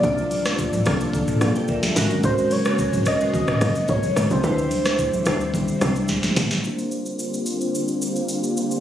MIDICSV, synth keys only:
0, 0, Header, 1, 2, 480
1, 0, Start_track
1, 0, Tempo, 550459
1, 31, Time_signature, 4, 2, 24, 8
1, 7674, End_track
2, 0, Start_track
2, 0, Title_t, "Synth keys"
2, 0, Program_c, 0, 88
2, 0, Control_c, 0, 64, 127
2, 0, Note_on_c, 0, 58, 75
2, 0, Note_on_c, 0, 62, 66
2, 0, Note_on_c, 0, 65, 67
2, 0, Note_on_c, 0, 67, 87
2, 0, Note_on_c, 0, 72, 80
2, 26, Note_off_c, 0, 58, 0
2, 26, Note_on_c, 0, 58, 93
2, 31, Note_off_c, 0, 62, 0
2, 31, Note_on_c, 0, 62, 91
2, 37, Note_off_c, 0, 65, 0
2, 37, Note_on_c, 0, 65, 92
2, 42, Note_on_c, 0, 74, 104
2, 608, Note_off_c, 0, 58, 0
2, 611, Note_off_c, 0, 62, 0
2, 614, Note_off_c, 0, 65, 0
2, 616, Note_off_c, 0, 74, 0
2, 747, Note_on_c, 0, 58, 93
2, 752, Note_on_c, 0, 62, 84
2, 757, Note_on_c, 0, 65, 84
2, 762, Note_on_c, 0, 69, 99
2, 997, Note_off_c, 0, 69, 0
2, 1137, Note_off_c, 0, 58, 0
2, 1139, Note_off_c, 0, 62, 0
2, 1142, Note_off_c, 0, 65, 0
2, 1360, Note_on_c, 0, 79, 66
2, 1366, Note_on_c, 0, 74, 58
2, 1467, Note_off_c, 0, 79, 0
2, 1470, Note_off_c, 0, 74, 0
2, 1477, Note_on_c, 0, 76, 77
2, 1481, Note_on_c, 0, 70, 64
2, 1592, Note_off_c, 0, 76, 0
2, 1595, Note_off_c, 0, 70, 0
2, 1601, Note_on_c, 0, 74, 66
2, 1607, Note_on_c, 0, 69, 56
2, 1708, Note_on_c, 0, 56, 96
2, 1714, Note_on_c, 0, 61, 88
2, 1718, Note_on_c, 0, 66, 92
2, 1720, Control_c, 0, 64, 0
2, 1723, Note_off_c, 0, 67, 0
2, 1724, Note_on_c, 0, 70, 108
2, 1725, Note_off_c, 0, 72, 0
2, 1826, Note_off_c, 0, 74, 0
2, 1830, Note_off_c, 0, 69, 0
2, 1857, Control_c, 0, 64, 127
2, 2189, Note_off_c, 0, 56, 0
2, 2192, Note_off_c, 0, 61, 0
2, 2194, Note_off_c, 0, 66, 0
2, 2197, Note_off_c, 0, 70, 0
2, 2314, Note_on_c, 0, 56, 76
2, 2318, Note_on_c, 0, 60, 55
2, 2323, Note_on_c, 0, 66, 69
2, 2329, Note_on_c, 0, 70, 85
2, 2371, Note_off_c, 0, 60, 0
2, 2375, Note_on_c, 0, 61, 71
2, 2695, Note_off_c, 0, 56, 0
2, 2699, Note_off_c, 0, 66, 0
2, 2702, Note_off_c, 0, 70, 0
2, 2725, Note_off_c, 0, 61, 0
2, 2794, Note_on_c, 0, 56, 72
2, 2799, Note_on_c, 0, 61, 67
2, 2804, Note_on_c, 0, 66, 64
2, 2809, Note_on_c, 0, 72, 76
2, 3561, Note_off_c, 0, 56, 0
2, 3563, Note_off_c, 0, 61, 0
2, 3566, Note_off_c, 0, 66, 0
2, 3568, Note_off_c, 0, 72, 0
2, 3866, Note_on_c, 0, 55, 98
2, 3871, Note_on_c, 0, 62, 90
2, 3877, Note_on_c, 0, 64, 92
2, 3881, Note_on_c, 0, 71, 86
2, 3882, Control_c, 0, 64, 0
2, 3935, Note_off_c, 0, 71, 0
2, 3939, Note_on_c, 0, 72, 105
2, 4026, Control_c, 0, 64, 127
2, 4448, Note_off_c, 0, 55, 0
2, 4451, Note_off_c, 0, 62, 0
2, 4454, Note_off_c, 0, 64, 0
2, 4485, Note_off_c, 0, 72, 0
2, 4590, Note_on_c, 0, 55, 93
2, 4595, Note_on_c, 0, 62, 85
2, 4600, Note_on_c, 0, 64, 88
2, 4605, Note_on_c, 0, 72, 107
2, 4978, Note_off_c, 0, 55, 0
2, 4981, Note_off_c, 0, 62, 0
2, 4983, Note_off_c, 0, 64, 0
2, 4986, Note_off_c, 0, 72, 0
2, 5067, Note_on_c, 0, 55, 86
2, 5072, Note_on_c, 0, 62, 78
2, 5077, Note_on_c, 0, 64, 76
2, 5082, Note_on_c, 0, 72, 98
2, 5648, Note_off_c, 0, 55, 0
2, 5651, Note_off_c, 0, 62, 0
2, 5653, Note_off_c, 0, 64, 0
2, 5656, Note_off_c, 0, 72, 0
2, 5779, Note_on_c, 0, 58, 74
2, 5790, Note_on_c, 0, 62, 66
2, 5800, Note_on_c, 0, 65, 64
2, 5802, Control_c, 0, 64, 0
2, 5811, Note_on_c, 0, 72, 82
2, 5939, Control_c, 0, 64, 127
2, 7670, Note_off_c, 0, 58, 0
2, 7674, Note_off_c, 0, 62, 0
2, 7674, Note_off_c, 0, 65, 0
2, 7674, Note_off_c, 0, 72, 0
2, 7674, End_track
0, 0, End_of_file